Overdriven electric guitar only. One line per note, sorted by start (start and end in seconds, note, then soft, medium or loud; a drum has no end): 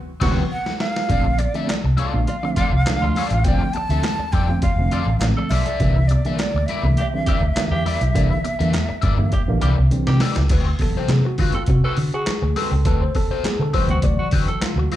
0.20 0.41 C4 medium
0.20 0.42 F#4 medium
0.20 0.42 B4 medium
1.09 1.26 F4 medium
1.09 1.25 A4 medium
1.09 1.24 D5 medium
1.26 muted overdriven electric guitar stroke soft
1.39 muted overdriven electric guitar stroke soft
1.55 1.67 F4 soft
1.55 1.67 A4 soft
1.55 1.67 E5 medium
1.85 muted overdriven electric guitar stroke soft
1.97 2.18 F4 medium
1.97 2.14 A4 loud
1.97 2.13 D5 medium
2.14 muted overdriven electric guitar stroke soft
2.28 muted overdriven electric guitar stroke soft
2.43 muted overdriven electric guitar stroke soft
2.58 2.74 F4 medium
2.58 2.73 A4 medium
2.58 2.72 D5 medium
2.73 muted overdriven electric guitar stroke soft
3.04 muted overdriven electric guitar stroke soft
3.17 3.37 F4 medium
3.17 3.33 A4 medium
3.17 3.32 D5 medium
3.33 muted overdriven electric guitar stroke soft
3.46 3.62 F4 medium
3.46 3.62 A4 medium
3.46 3.61 D5 loud
3.62 muted overdriven electric guitar stroke soft
3.76 muted overdriven electric guitar stroke soft
3.91 4.03 F4 medium
3.91 4.02 A4 medium
3.91 4.02 E5 medium
4.20 muted overdriven electric guitar stroke soft
4.33 4.50 F4 medium
4.33 4.49 A4 medium
4.33 4.48 D5 loud
4.49 muted overdriven electric guitar stroke soft
4.63 muted overdriven electric guitar stroke soft
4.92 5.05 F4 medium
4.92 5.06 A4 medium
4.92 5.06 D5 medium
5.08 muted overdriven electric guitar stroke soft
5.22 muted overdriven electric guitar stroke soft
5.38 muted overdriven electric guitar stroke soft
5.51 5.64 F4 medium
5.51 5.64 A4 medium
5.51 5.65 D5 medium
5.67 5.79 F4 medium
5.67 5.78 A4 medium
5.67 5.78 D5 medium
5.81 5.97 E4 medium
5.81 5.97 A#4 medium
5.81 5.96 D5 medium
5.97 muted overdriven electric guitar stroke soft
6.11 muted overdriven electric guitar stroke soft
6.26 6.38 E4 soft
6.26 6.38 A#4 medium
6.26 6.37 E5 medium
6.56 muted overdriven electric guitar stroke soft
6.69 6.86 E4 medium
6.69 6.86 A#4 medium
6.69 6.85 D5 loud
6.86 muted overdriven electric guitar stroke soft
7.00 muted overdriven electric guitar stroke soft
7.28 7.41 E4 medium
7.28 7.41 A#4 medium
7.28 7.42 D5 medium
7.43 muted overdriven electric guitar stroke soft
7.57 muted overdriven electric guitar stroke soft
7.72 muted overdriven electric guitar stroke soft
7.86 8.03 E4 medium
7.86 8.02 A#4 medium
7.86 8.02 D5 loud
8.03 muted overdriven electric guitar stroke medium
8.15 8.32 E4 medium
8.15 8.30 A#4 medium
8.15 8.29 D5 loud
8.30 muted overdriven electric guitar stroke soft
8.44 muted overdriven electric guitar stroke soft
8.59 8.72 E4 soft
8.59 8.72 A#4 medium
8.59 8.72 E5 medium
8.89 muted overdriven electric guitar stroke soft
9.02 9.19 E4 medium
9.02 9.18 A#4 medium
9.02 9.17 D5 medium
9.19 muted overdriven electric guitar stroke soft
9.32 muted overdriven electric guitar stroke soft
9.61 9.75 E4 medium
9.61 9.75 A#4 medium
9.61 9.76 D5 medium
9.78 muted overdriven electric guitar stroke soft
10.09 muted overdriven electric guitar stroke medium
10.21 10.38 E4 loud
10.21 10.38 A#4 medium
10.21 10.37 D5 loud
10.38 muted overdriven electric guitar stroke soft
10.51 10.68 C4 loud
10.51 10.67 F#4 medium
10.51 10.65 B4 loud
10.67 muted overdriven electric guitar stroke soft
10.81 muted overdriven electric guitar stroke soft
10.97 11.09 C4 medium
10.97 11.09 F#4 medium
10.97 11.08 C5 medium
11.25 muted overdriven electric guitar stroke soft
11.39 11.56 C4 medium
11.39 11.55 F#4 medium
11.39 11.54 B4 medium
11.55 muted overdriven electric guitar stroke soft
11.69 muted overdriven electric guitar stroke soft
11.84 11.97 C4 medium
11.84 11.98 F#4 medium
11.84 11.98 B4 medium
11.98 muted overdriven electric guitar stroke soft
12.14 muted overdriven electric guitar stroke soft
12.42 muted overdriven electric guitar stroke soft
12.57 12.73 C4 medium
12.57 12.73 F#4 medium
12.57 12.72 B4 medium
12.73 muted overdriven electric guitar stroke soft
12.85 13.02 C4 medium
12.85 13.02 F#4 medium
12.85 13.01 B4 medium
13.02 muted overdriven electric guitar stroke soft
13.16 muted overdriven electric guitar stroke soft
13.31 13.43 C4 medium
13.31 13.43 F#4 medium
13.31 13.43 C5 medium
13.61 muted overdriven electric guitar stroke soft
13.74 13.91 C4 medium
13.74 13.90 F#4 medium
13.74 13.89 B4 medium
13.90 muted overdriven electric guitar stroke soft
14.03 muted overdriven electric guitar stroke soft
14.33 14.46 C4 medium
14.33 14.47 F#4 medium
14.33 14.47 B4 medium
14.50 muted overdriven electric guitar stroke soft
14.78 muted overdriven electric guitar stroke soft
14.92 14.96 C4 medium